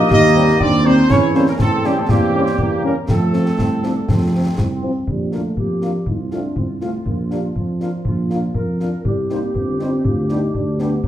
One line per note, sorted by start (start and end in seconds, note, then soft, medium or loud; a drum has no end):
0.00 0.60 A#3 medium
0.00 0.10 D#4 loud
0.00 0.11 D#5 loud
0.09 0.52 D#2 medium
0.09 0.62 D#4 loud
0.09 0.56 G4 loud
0.09 0.58 D#5 loud
0.09 concert bass drum medium
0.09 snare medium
0.35 0.44 G3 medium
0.35 0.44 C4 medium
0.48 snare medium
0.59 1.02 D#2 medium
0.59 1.10 C4 medium
0.59 0.87 D4 medium
0.59 0.83 F4 medium
0.59 0.85 D5 loud
0.59 concert bass drum medium
0.85 0.94 G3 medium
0.85 1.09 C4 medium
0.85 0.95 C4 medium
0.85 1.10 D#4 medium
0.85 1.11 C5 loud
1.09 1.52 E2 medium
1.09 1.56 C#4 medium
1.09 1.36 C#4 medium
1.09 1.33 E4 medium
1.09 1.35 C#5 loud
1.09 concert bass drum medium
1.09 snare medium
1.09 crash soft
1.34 1.44 G3 medium
1.34 1.44 A#3 medium
1.34 1.49 C4 medium
1.34 1.44 C#4 medium
1.34 1.46 E4 medium
1.34 1.48 C5 medium
1.34 snare medium
1.46 1.60 A#3 medium
1.46 1.59 C#4 medium
1.46 1.54 A#4 medium
1.46 snare medium
1.59 2.01 E2 medium
1.59 1.72 A3 medium
1.59 1.84 C4 medium
1.59 2.59 C4 medium
1.59 1.83 A4 medium
1.59 concert bass drum medium
1.59 snare medium
1.84 1.93 G3 medium
1.84 1.96 G3 medium
1.84 1.90 A#3 medium
1.84 1.93 A#3 medium
1.84 1.93 C#4 medium
1.84 1.97 G4 medium
1.84 snare medium
1.96 2.08 A3 medium
1.96 2.02 C4 medium
1.96 2.11 A4 medium
2.09 2.51 E2 medium
2.09 2.80 G3 medium
2.09 2.80 A#3 medium
2.09 2.84 G4 loud
2.09 concert bass drum medium
2.09 snare medium
2.34 2.43 G3 medium
2.34 2.43 A#3 medium
2.34 2.43 C#4 medium
2.46 snare soft
2.58 2.97 E2 medium
2.58 2.95 A#3 medium
2.58 concert bass drum medium
2.83 2.93 G3 soft
2.83 2.93 A#3 soft
2.83 2.95 A#3 medium
2.83 2.93 C#4 medium
2.83 2.96 C#4 medium
2.83 2.96 A#4 medium
3.08 3.51 F2 medium
3.08 4.54 A3 medium
3.08 3.51 A3 medium
3.08 4.54 C4 medium
3.08 4.54 A4 medium
3.08 concert bass drum medium
3.08 snare medium
3.33 3.42 F3 soft
3.33 3.42 C4 medium
3.33 snare soft
3.46 snare soft
3.59 4.00 C2 medium
3.59 3.70 C4 medium
3.59 concert bass drum medium
3.59 snare medium
3.83 3.93 F3 soft
3.83 3.93 C4 soft
3.83 3.95 D4 medium
3.83 snare soft
4.08 4.50 F2 medium
4.08 4.55 C4 medium
4.08 concert bass drum medium
4.08 snare medium
4.33 4.42 F3 soft
4.33 4.42 C4 soft
4.58 5.00 C2 medium
4.58 5.04 C4 medium
4.58 concert bass drum medium
4.58 snare medium
4.83 4.92 F3 soft
4.83 4.92 C4 soft
5.07 5.49 A#1 soft
5.07 5.35 G3 medium
5.07 concert bass drum medium
5.32 5.59 A3 soft
5.32 5.42 A#3 soft
5.32 5.42 D4 soft
5.32 5.41 F4 soft
5.32 5.42 F5 soft
5.32 snare soft
5.56 5.99 F2 soft
5.56 5.82 A#3 medium
5.56 6.03 G4 soft
5.56 concert bass drum medium
5.82 5.94 A#3 medium
5.82 5.91 A#3 soft
5.82 5.92 D4 soft
5.82 5.92 F4 soft
5.82 5.91 F5 soft
5.82 snare soft
6.06 6.49 C2 soft
6.06 6.18 D#4 medium
6.06 8.06 F4 soft
6.06 concert bass drum medium
6.31 6.41 A3 soft
6.31 6.41 C4 soft
6.31 6.55 D4 medium
6.31 6.41 F4 soft
6.31 6.40 F5 soft
6.31 snare soft
6.56 6.99 C2 soft
6.56 6.69 C4 medium
6.56 concert bass drum medium
6.81 6.91 A3 soft
6.81 6.93 A3 medium
6.81 6.91 C4 soft
6.81 6.91 F4 soft
6.81 6.90 F5 soft
6.81 snare soft
7.06 7.48 A#1 soft
7.06 7.18 A#3 medium
7.06 concert bass drum medium
7.31 7.43 G3 soft
7.31 7.40 A#3 soft
7.31 7.40 D4 soft
7.31 7.40 F4 soft
7.31 7.41 F5 soft
7.31 snare soft
7.56 7.98 F2 soft
7.56 8.77 F3 soft
7.56 concert bass drum medium
7.80 7.90 A#3 soft
7.80 7.90 D4 soft
7.80 7.90 F4 soft
7.80 7.91 F5 soft
7.80 snare soft
8.05 8.48 A#1 soft
8.05 8.53 F4 soft
8.05 concert bass drum medium
8.30 8.40 A#3 soft
8.30 8.40 D4 soft
8.30 8.40 F4 soft
8.30 8.41 F5 soft
8.30 snare soft
8.54 8.93 F2 soft
8.54 9.02 A#4 soft
8.54 concert bass drum medium
8.80 8.90 A#3 soft
8.80 8.90 D4 soft
8.80 8.90 F4 soft
8.80 8.90 F5 soft
8.80 snare soft
9.05 9.47 C2 soft
9.05 9.17 G3 medium
9.05 11.01 G4 medium
9.05 concert bass drum medium
9.30 9.40 G3 soft
9.30 9.57 A#3 medium
9.30 9.40 C4 soft
9.30 9.40 D#4 soft
9.30 9.40 C5 soft
9.30 snare soft
9.55 9.97 G1 soft
9.55 9.80 C4 medium
9.55 concert bass drum medium
9.79 9.90 G3 soft
9.79 10.08 C4 medium
9.79 9.90 C4 soft
9.79 9.90 D#4 soft
9.79 9.89 C5 soft
9.79 snare soft
10.05 10.47 D2 soft
10.05 10.32 F4 medium
10.05 concert bass drum medium
10.29 10.39 G3 soft
10.29 10.39 B3 soft
10.29 10.39 D4 soft
10.29 10.56 D#4 medium
10.29 10.40 G4 soft
10.29 snare soft
10.54 10.97 D2 medium
10.54 10.82 D4 medium
10.54 concert bass drum medium
10.79 10.89 G3 soft
10.79 11.04 B3 medium
10.79 10.89 B3 soft
10.79 10.89 D4 soft
10.79 10.89 G4 soft
10.79 snare soft
11.04 11.08 C4 medium
11.04 concert bass drum medium